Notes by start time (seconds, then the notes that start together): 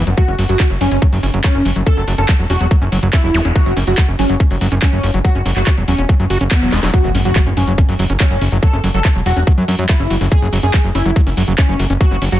0.07 F#1 F#3, closed hi-hat
0.17 F#3 F#4, kick, closed hi-hat
0.28 F#1 C#4, closed hi-hat
0.39 F#1 F#3, open hi-hat
0.49 F#1 F#3 F#4, closed hi-hat
0.60 C#4, kick, clap, closed hi-hat
0.70 F#1 F#3, closed hi-hat
0.81 F#1 F#3 C#4, open hi-hat
0.91 F#1 C#4, closed hi-hat
1.02 F#3, kick, closed hi-hat
1.13 F#1 F#3, open hi-hat
1.23 F#1 C#4, open hi-hat
1.34 F#1 F#3, closed hi-hat
1.44 F#3 C#4, kick, clap, closed hi-hat
1.55 F#1 C#4, closed hi-hat
1.65 F#1 F#3, open hi-hat
1.76 F#1 F#3, closed hi-hat
1.86 C#4 A4, kick, closed hi-hat
1.97 F#1 F#3, closed hi-hat
2.08 F#1 F#3, open hi-hat
2.18 F#1 C#4 A4, closed hi-hat
2.29 F#3, kick, clap, closed hi-hat
2.39 E1 F#3, closed hi-hat
2.50 E1 C#4 F#4, open hi-hat
2.60 E1 F#3, closed hi-hat
2.71 F#3, kick, closed hi-hat
2.82 F#1 C#4, closed hi-hat
2.92 F#1 F#3, open hi-hat
3.03 F#1 F#3, closed hi-hat
3.13 C#4 E4, kick, clap, closed hi-hat
3.24 E1 F#3, closed hi-hat
3.34 E1 F#3, open hi-hat, zap
3.45 E1 C#4, closed hi-hat
3.56 F#3 F#4, kick, closed hi-hat
3.66 F#1 F#3, closed hi-hat
3.77 F#1 C#4, open hi-hat
3.87 F#1 F#3 F#4, closed hi-hat
3.98 F#3, kick, clap, closed hi-hat
4.08 F#1 C#4, closed hi-hat
4.19 F#1 F#3 C#4, open hi-hat
4.29 F#1 F#3, closed hi-hat
4.40 C#4, kick, closed hi-hat
4.51 F#1 F#3, open hi-hat
4.61 F#1 F#3, open hi-hat
4.72 F#1 C#4, closed hi-hat
4.82 F#3 C#4, kick, clap, closed hi-hat
4.93 F#1 F#3, closed hi-hat
5.03 F#1 C#4, open hi-hat
5.14 F#1 F#3, closed hi-hat
5.25 F#3 F#4, kick, closed hi-hat
5.35 F#1 C#4, closed hi-hat
5.46 F#1 F#3, open hi-hat
5.56 F#1 F#3 F#4, clap, closed hi-hat
5.67 C#4, kick, clap, closed hi-hat
5.77 E1 F#3, closed hi-hat
5.88 E1 F#3 C#4, open hi-hat
5.99 E1 C#4, closed hi-hat
6.09 F#3, kick, closed hi-hat
6.20 F#1 F#3, closed hi-hat
6.30 F#1 F#4, open hi-hat
6.41 F#1 C#4, closed hi-hat
6.51 F#3 B3, kick, clap, closed hi-hat
6.62 E1 F#3, closed hi-hat
6.72 E1 G#3, snare, open hi-hat
6.83 E1 F#3, snare, open hi-hat
6.94 F#3 F#4, kick, closed hi-hat, impact
7.04 F#1 F#3, closed hi-hat
7.15 F#1 C#4, open hi-hat
7.25 F#1 F#3 F#4, closed hi-hat
7.36 F#3, kick, clap, closed hi-hat
7.46 F#1 C#4, closed hi-hat
7.57 F#1 F#3 C#4, open hi-hat
7.68 F#1 F#3, closed hi-hat
7.78 C#4, kick, closed hi-hat
7.89 F#1 F#3, open hi-hat
7.99 F#1 F#3, open hi-hat
8.10 F#1 C#4, closed hi-hat
8.20 F#3 C#4, kick, clap, closed hi-hat
8.31 F#1 F#3, closed hi-hat
8.41 F#1 C#4, open hi-hat
8.52 F#1 F#3, closed hi-hat
8.63 F#3 A4, kick, closed hi-hat
8.73 F#1 C#4, closed hi-hat
8.84 F#1 F#3, open hi-hat
8.94 F#1 F#3 A4, closed hi-hat
9.05 C#4, kick, clap, closed hi-hat
9.15 E1 F#3, closed hi-hat
9.26 E1 F#3 F#4, open hi-hat
9.37 E1 C#4, closed hi-hat
9.47 F#3, kick, closed hi-hat
9.58 F#2 F#3, closed hi-hat
9.68 F#2 C#4, open hi-hat
9.79 F#2 F#3, closed hi-hat
9.89 F#3 E4, kick, clap, closed hi-hat
10.00 F#1 C#4, closed hi-hat
10.10 F#1 F#3, open hi-hat
10.21 F#1 F#3, open hi-hat
10.32 C#4 G#4, kick, closed hi-hat
10.42 F#1 F#3, closed hi-hat
10.53 F#1 F#3, open hi-hat
10.63 F#1 C#4 G#4, closed hi-hat
10.74 F#3, kick, clap, closed hi-hat
10.84 F#1 F#3, closed hi-hat
10.95 F#1 C#4 E4, open hi-hat
11.06 F#1 F#3, closed hi-hat
11.16 F#3, kick, closed hi-hat
11.27 F#1 C#4, open hi-hat
11.37 F#1 F#3, open hi-hat
11.48 F#1 F#3, closed hi-hat
11.58 C#4, kick, clap, closed hi-hat
11.69 F#1 F#3, closed hi-hat
11.79 F#1 F#3, open hi-hat
11.90 F#1 C#4, closed hi-hat
12.01 F#3 F#4, kick, closed hi-hat
12.11 F#1 F#3, closed hi-hat
12.22 F#1 C#4, open hi-hat
12.32 F#1 F#3 F#4, closed hi-hat